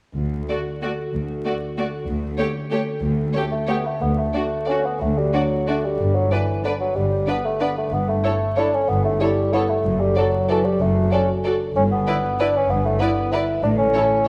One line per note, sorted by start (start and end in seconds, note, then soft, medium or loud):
0.16 0.42 D2 soft
0.16 0.44 D2 soft
0.16 1.12 D3 soft
0.33 1.28 A3 soft
0.49 0.58 A3 soft
0.49 1.44 D4 soft
0.49 0.59 F#4 soft
0.49 0.57 D5 soft
0.66 0.98 F#4 soft
0.82 0.90 A3 soft
0.82 0.91 F#4 soft
0.82 1.77 A4 soft
0.82 0.91 D5 soft
0.99 1.61 F#4 soft
1.14 1.38 D2 soft
1.14 1.40 D2 soft
1.14 2.06 D3 soft
1.29 2.22 A3 soft
1.45 1.53 A3 soft
1.45 2.09 D4 soft
1.45 1.55 F#4 soft
1.45 1.54 D5 soft
1.62 1.92 F#4 soft
1.78 1.86 A3 soft
1.78 1.87 F#4 soft
1.78 2.70 A4 soft
1.78 1.86 D5 soft
1.94 2.09 F#4 soft
2.08 2.32 D2 soft
2.08 2.33 D2 medium
2.08 3.02 D3 soft
2.23 3.18 A3 soft
2.38 2.47 A3 soft
2.38 3.34 C#4 soft
2.38 2.47 G4 soft
2.38 2.46 C#5 soft
2.55 2.87 G4 soft
2.71 2.79 A3 soft
2.71 2.79 G4 soft
2.71 3.68 A4 soft
2.71 2.80 C#5 soft
2.88 3.51 G4 soft
3.03 3.28 D2 medium
3.03 3.30 D2 medium
3.03 4.01 D3 soft
3.19 4.33 A3 soft
3.34 3.44 A3 soft
3.34 4.04 C#4 soft
3.34 3.44 G4 soft
3.34 3.42 C#5 soft
3.51 3.70 A3 medium
3.51 3.85 G4 soft
3.67 3.76 A3 soft
3.67 3.87 B3 medium
3.67 3.77 G4 soft
3.67 4.17 A4 soft
3.67 3.75 C#5 soft
3.86 4.03 A3 medium
3.86 4.04 G4 soft
4.01 4.29 D2 soft
4.01 5.00 D3 soft
4.01 4.20 B3 medium
4.18 4.69 A3 medium
4.18 4.51 A4 soft
4.33 5.33 A3 soft
4.33 4.42 D4 soft
4.33 4.44 F#4 soft
4.33 4.41 D5 soft
4.52 4.85 A4 soft
4.66 4.87 C#4 medium
4.66 4.77 D4 soft
4.66 5.68 D4 soft
4.66 4.74 D5 soft
4.71 4.79 F#4 soft
4.85 5.00 B3 soft
5.01 5.28 D2 soft
5.01 6.00 D3 soft
5.01 5.19 A3 soft
5.17 5.37 G3 medium
5.17 6.00 F#4 soft
5.33 5.70 F#3 medium
5.33 6.00 A3 soft
5.33 5.42 D4 soft
5.33 5.41 F#4 soft
5.33 5.42 D5 soft
5.52 5.84 A4 soft
5.68 5.86 A3 medium
5.68 6.65 D4 soft
5.68 5.77 D4 soft
5.68 5.76 F#4 soft
5.68 5.76 D5 soft
5.85 6.17 G3 soft
5.85 6.01 A4 soft
5.99 6.26 G1 soft
5.99 6.26 G2 soft
5.99 6.96 G2 soft
6.15 6.33 F#3 medium
6.15 6.49 B4 soft
6.31 7.27 D3 soft
6.31 6.64 E3 medium
6.31 6.40 D4 soft
6.31 6.41 B4 soft
6.31 6.39 D5 soft
6.50 6.81 B4 soft
6.64 6.72 D3 soft
6.64 6.72 D4 soft
6.64 7.60 D4 soft
6.64 6.73 B4 soft
6.64 6.73 D5 soft
6.80 6.98 F#3 soft
6.80 7.44 B4 soft
6.96 7.22 G1 soft
6.96 7.22 G2 soft
6.96 7.91 G2 soft
6.96 7.30 G3 soft
7.12 9.87 G4 soft
7.27 7.94 D3 soft
7.27 7.46 B3 medium
7.27 7.35 D4 soft
7.27 7.36 B4 soft
7.27 7.35 D5 soft
7.45 7.63 A3 medium
7.45 7.76 B4 soft
7.60 7.77 B3 medium
7.60 7.68 D4 soft
7.60 7.94 D4 soft
7.60 7.69 B4 soft
7.60 7.69 D5 soft
7.77 7.94 A3 medium
7.77 7.94 B4 soft
7.92 8.19 G1 soft
7.92 8.88 G2 soft
7.92 8.19 G2 soft
7.92 8.10 B3 medium
8.08 8.59 A3 medium
8.08 8.40 A4 soft
8.24 9.20 G3 soft
8.24 8.32 E4 soft
8.24 8.33 A4 soft
8.24 8.33 C#5 soft
8.41 8.73 A4 soft
8.57 9.54 C#4 soft
8.57 8.75 D4 medium
8.57 8.66 E4 soft
8.57 8.67 A4 soft
8.57 8.65 C#5 soft
8.74 8.90 C#4 medium
8.74 9.37 A4 soft
8.89 9.16 G1 soft
8.89 9.86 G2 soft
8.89 9.16 G2 medium
8.89 9.04 B3 medium
9.04 9.22 A3 medium
9.04 9.86 E4 soft
9.20 9.54 G3 medium
9.20 9.86 G3 soft
9.20 9.29 E4 soft
9.20 9.31 A4 soft
9.20 9.29 C#5 soft
9.39 9.68 A4 soft
9.53 9.70 B3 medium
9.53 9.86 C#4 soft
9.53 9.62 E4 soft
9.53 9.63 A4 soft
9.53 9.62 C#5 soft
9.69 10.01 A3 medium
9.69 9.99 A4 soft
9.84 10.11 F#1 medium
9.84 10.79 F#2 soft
9.84 10.11 F#2 soft
10.00 10.18 G3 medium
10.00 10.32 A4 soft
10.16 11.10 F#3 soft
10.16 10.51 F#3 medium
10.16 10.25 F#4 soft
10.16 10.26 A4 soft
10.16 10.24 D5 soft
10.34 10.64 A4 soft
10.49 10.66 E3 medium
10.49 11.43 D4 soft
10.49 10.58 F#4 soft
10.49 10.58 A4 soft
10.49 10.57 D5 soft
10.65 10.82 G3 medium
10.65 11.27 A4 soft
10.80 11.06 F#1 medium
10.80 11.76 F#2 soft
10.80 11.07 F#2 medium
10.80 11.14 A3 medium
10.96 11.77 F#4 soft
11.12 11.76 F#3 soft
11.12 11.29 C#4 medium
11.12 11.21 F#4 soft
11.12 11.20 A4 soft
11.12 11.20 D5 soft
11.28 11.59 A4 soft
11.44 12.39 D4 soft
11.44 11.54 F#4 soft
11.44 11.53 A4 soft
11.44 11.53 D5 soft
11.60 11.77 A4 soft
11.75 12.02 G1 medium
11.75 12.69 G2 soft
11.75 12.02 G2 medium
11.75 11.83 C#4 medium
11.91 12.42 B3 medium
11.91 12.23 B4 soft
12.07 12.99 D3 soft
12.07 12.15 E4 soft
12.07 12.15 B4 soft
12.07 12.15 D5 soft
12.24 12.54 B4 soft
12.40 13.32 D4 soft
12.40 12.58 D4 medium
12.40 12.49 E4 soft
12.40 12.48 B4 soft
12.40 12.48 D5 soft
12.56 12.72 C#4 medium
12.56 13.16 B4 soft
12.70 12.95 G1 medium
12.70 13.65 G2 soft
12.70 12.95 G2 medium
12.70 12.87 B3 medium
12.85 13.01 A3 medium
12.85 14.28 E4 soft
13.00 13.65 D3 soft
13.00 13.34 B3 medium
13.00 13.08 E4 soft
13.00 13.08 B4 soft
13.00 13.09 D5 soft
13.17 13.47 B4 soft
13.32 13.65 D4 soft
13.32 13.63 E4 medium
13.32 13.41 E4 soft
13.32 13.41 B4 soft
13.32 13.42 D5 soft
13.48 13.65 B4 soft
13.63 13.89 A1 medium
13.63 13.89 A2 medium
13.63 14.28 A2 soft
13.63 13.70 D4 medium
13.78 14.28 C#4 medium
13.78 14.10 A4 soft
13.93 14.28 E3 soft
13.93 14.03 E4 soft
13.93 14.03 A4 soft
13.93 14.01 C#5 soft
14.11 14.28 A4 soft